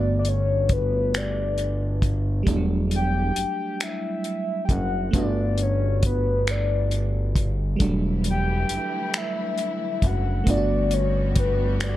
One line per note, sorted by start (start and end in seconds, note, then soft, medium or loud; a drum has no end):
0.00 2.43 G1 loud
0.00 2.41 A3 medium
0.00 2.42 B3 soft
0.00 2.43 D4 soft
0.00 2.44 F#4 medium
0.00 0.18 D5 medium
0.19 0.30 D5 medium
0.25 0.74 C#5 medium
0.25 closed hi-hat soft
0.69 1.19 B4 medium
0.69 kick medium
0.69 closed hi-hat medium
1.14 2.15 D5 medium
1.14 finger snap medium
1.14 closed hi-hat medium
1.58 closed hi-hat soft
2.02 kick medium
2.02 closed hi-hat medium
2.43 5.07 G3 medium
2.43 5.09 A3 medium
2.43 kick medium
2.47 3.32 E1 loud
2.47 5.10 D4 medium
2.47 2.55 E4 medium
2.47 closed hi-hat medium
2.57 5.14 F#3 medium
2.91 closed hi-hat medium
2.96 3.85 G5 loud
3.36 3.46 F#1 soft
3.36 closed hi-hat medium
3.80 4.64 E5 loud
3.80 finger snap medium
3.80 closed hi-hat medium
4.24 closed hi-hat soft
4.65 4.74 G5 medium
4.65 kick medium
4.69 5.10 F#1 medium
4.69 5.18 F#5 loud
4.69 closed hi-hat medium
5.11 7.76 G1 loud
5.11 7.75 A3 medium
5.11 7.76 B3 medium
5.11 7.77 D4 medium
5.11 kick medium
5.11 closed hi-hat medium
5.16 7.78 F#4 medium
5.16 5.64 D5 medium
5.58 closed hi-hat soft
5.62 6.04 C#5 medium
6.03 6.52 B4 medium
6.03 kick medium
6.03 closed hi-hat medium
6.47 7.49 D5 medium
6.47 finger snap medium
6.47 closed hi-hat medium
6.91 closed hi-hat soft
7.36 kick medium
7.36 closed hi-hat medium
7.76 10.41 G3 medium
7.76 10.42 A3 medium
7.76 kick medium
7.76 closed hi-hat medium
7.81 8.65 E1 loud
7.81 10.45 D3 medium
7.81 10.45 E3 medium
7.81 10.44 F#3 medium
7.81 10.45 A3 medium
7.81 10.43 D4 medium
7.81 10.45 E4 medium
8.24 closed hi-hat medium
8.30 9.19 G5 loud
8.69 8.79 F#1 soft
8.69 closed hi-hat medium
9.14 10.08 E5 loud
9.14 finger snap medium
9.14 closed hi-hat medium
9.58 closed hi-hat soft
10.02 10.43 F#1 loud
10.02 kick medium
10.02 closed hi-hat medium
10.06 10.52 F#5 medium
10.44 11.97 A3 soft
10.44 11.97 B3 soft
10.44 kick medium
10.44 closed hi-hat medium
10.48 11.97 G1 loud
10.48 11.97 G3 medium
10.48 11.97 A3 medium
10.48 11.97 B3 medium
10.48 11.97 D4 soft
10.48 10.55 F4 soft
10.48 11.97 F#4 medium
10.48 10.95 D5 loud
10.57 11.97 F#4 medium
10.91 11.37 C#5 medium
10.91 closed hi-hat soft
11.36 11.85 B4 medium
11.36 kick medium
11.36 closed hi-hat medium
11.80 11.97 D5 medium
11.80 finger snap medium
11.80 closed hi-hat medium